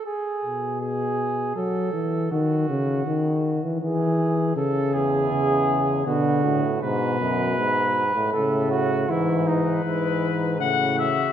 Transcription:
<<
  \new Staff \with { instrumentName = "Trumpet" } { \time 3/4 \key a \major \tempo 4 = 80 r2. | r2. | r2. | r2. |
r8 b'4. fis''8 e''8 | }
  \new Staff \with { instrumentName = "Flugelhorn" } { \time 3/4 \key a \major gis'4 gis'4 a'4 | fis'4. r8 gis'4 | a'8 gis'4. fis'4 | b'2 a'8 fis'8 |
e'8 dis'8 e'8 r8 fis'4 | }
  \new Staff \with { instrumentName = "Trombone" } { \clef bass \time 3/4 \key a \major r8 b,4. fis8 e8 | dis8 cis8 dis8. e16 e4 | cis4 cis4 d4 | b,4.~ b,16 r16 cis4 |
e4 e4 cis4 | }
  \new Staff \with { instrumentName = "Euphonium" } { \clef bass \time 3/4 \key a \major r2. | r2. | r8 e,4. b,8 a,8 | gis,8 fis,8 gis,8. a,16 a,4 |
gis,4 gis,4 a,4 | }
>>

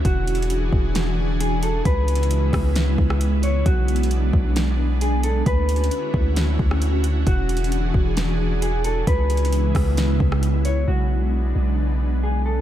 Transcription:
<<
  \new Staff \with { instrumentName = "Clean electric guitar" } { \time 4/4 \key b \dorian \tempo 4 = 133 fis'2 r4 gis'8 a'8 | b'2.~ b'8 cis''8 | fis'2 r4 gis'8 a'8 | b'2 r2 |
fis'2 r4 gis'8 a'8 | b'2.~ b'8 cis''8 | fis'2 r4 gis'8 a'8 | }
  \new Staff \with { instrumentName = "Ambient pad" } { \time 4/4 \key b \dorian << { <e d' gis'>1 | <cis gis e'>1 | <gis d'>1 | <d cis' fis'>1 |
<e d' gis'>1 | <cis gis e'>1 | <gis d'>1 | } \\ { fis'1 | b1~ | b1 | e'1 |
r1 | b1 | b1 | } >> }
  \new Staff \with { instrumentName = "808-style bass" } { \clef bass \time 4/4 \key b \dorian e,,4. e,,2~ e,,8 | cis,4. cis,4 cis,4. | b,,4. b,,2~ b,,8 | d,4 r8 d,4 d,4. |
e,,4. e,,2~ e,,8 | cis,4. cis,4 cis,4. | b,,4. b,,2~ b,,8 | }
  \new DrumStaff \with { instrumentName = "Drums" } \drummode { \time 4/4 \tuplet 3/2 { <hh bd>16 r16 r16 hh16 hh16 hh16 } hh8 bd8 <hh sn>4 hh8 hh8 | \tuplet 3/2 { <hh bd>16 r16 r16 hh16 hh16 hh16 } hh8 <hho bd ss>8 <hh sn>8 bd16 ss16 hh8 hh8 | \tuplet 3/2 { <hh bd>16 r16 r16 hh16 hh16 hh16 } hh8 bd8 <hh sn>4 hh8 hh8 | \tuplet 3/2 { <hh bd>16 r16 r16 hh16 hh16 hh16 } hh8 bd8 <hh sn>8 bd16 ss16 hh8 hh8 |
\tuplet 3/2 { <hh bd>16 r16 r16 hh16 hh16 hh16 } hh8 bd8 <hh sn>4 hh8 hh8 | \tuplet 3/2 { <hh bd>16 r16 r16 hh16 hh16 hh16 } hh8 <hho bd ss>8 <hh sn>8 bd16 ss16 hh8 hh8 | r4 r4 r4 r4 | }
>>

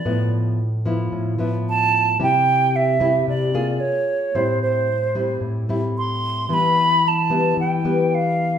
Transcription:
<<
  \new Staff \with { instrumentName = "Flute" } { \time 4/4 \key a \minor \tempo 4 = 112 d''8 r2 r8 a''4 | g''4 e''4 d''4 des''4 | c''8 c''4. r4 c'''4 | b''4 a''4 g''4 f''4 | }
  \new Staff \with { instrumentName = "Nylon-string guitar" } { \time 4/4 \key a \minor << { <f b e'>4 r8 <f b e'>4 <f b e'>4. | <g c' e' g'>4. <g c' e' g'>4 <bes f' gis'>4. | <g c' e'>4 r8 <g c' e'>4 <g c' e'>4. | <g b e'>4 r8 <g b e'>4 <g b>4. | } \\ { a,2 a,2 | c2 c4 r4 | a,2 a,2 | e2 e2 | } >> }
>>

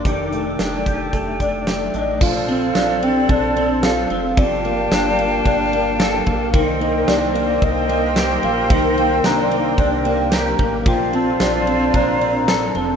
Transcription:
<<
  \new Staff \with { instrumentName = "Soft synth lead" } { \time 4/4 \key bes \major \tempo 4 = 111 r2 r8 d''4 ees''8 | f''4. g''8 a''4 f''4 | d''4 r2. | r8 ees''8 d''4 ees''4. f''8 |
g''4 bes''4 g''4 bes''8. r16 | g''8 a''4. bes''4. a''8 | }
  \new Staff \with { instrumentName = "Flute section" } { \time 4/4 \key bes \major <a' g'' d'''>1 | <a' c'' d''>1 | <g' f'' g'' a''>1 | <c' bes' c'' g''>1~ |
<c' bes' c'' g''>1 | <f' c'' d''>1 | }
  \new Staff \with { instrumentName = "Clean electric guitar" } { \time 4/4 \key bes \major <ees g'>8 a8 d'8 g'8 a8 d'8 a8 d'8 | f8 c'8 d'8 c'8 d'8 c'8 a'8 c'8 | f8 bes8 d'8 bes8 d'8 bes8 a'8 bes8 | ees8 bes8 d'8 bes4 bes8 g'8 bes8 |
ees8 bes8 d'8 bes8 d'8 bes8 g'8 bes8 | f8 c'8 d'8 c'8 d'8 c'8 a'8 c'8 | }
  \new Staff \with { instrumentName = "Analog synth bass" } { \clef bass \time 4/4 \key bes \major f,,4 f,,4 f,,4. a,,8 | bes,,4 bes,,4 bes,,4. f,,8 | g,,4 g,,4 g,,4. bes,,8 | c,4 c,4 c,4. bes,,8 |
c,4 c,4 c,4. a,,8 | bes,,4 bes,,4 bes,,4. f,,8 | }
  \new DrumStaff \with { instrumentName = "Drums" } \drummode { \time 4/4 <hh bd>8 hh8 <hh sn>8 <hh bd>8 <hh bd>8 <hh bd>8 <hh sn>8 hh8 | <cymc bd>8 cymr8 <cymr sn tamb>8 cymr8 <bd cymr>8 cymr8 <cymr sn tamb>8 cymr8 | <bd cymr>8 cymr8 <cymr sn tamb>8 cymr8 <bd cymr>8 cymr8 <cymr sn tamb>8 <bd cymr>8 | <bd cymr>8 cymr8 <cymr sn tamb>8 cymr8 <bd cymr>8 cymr8 <cymr sn tamb>8 cymr8 |
<bd cymr>8 cymr8 <cymr sn tamb>8 cymr8 <bd cymr>8 cymr8 <cymr sn tamb>8 <bd cymr>8 | <bd cymr>8 cymr8 <cymr sn tamb>8 cymr8 <bd cymr>8 cymr8 <cymr sn tamb>8 cymr8 | }
>>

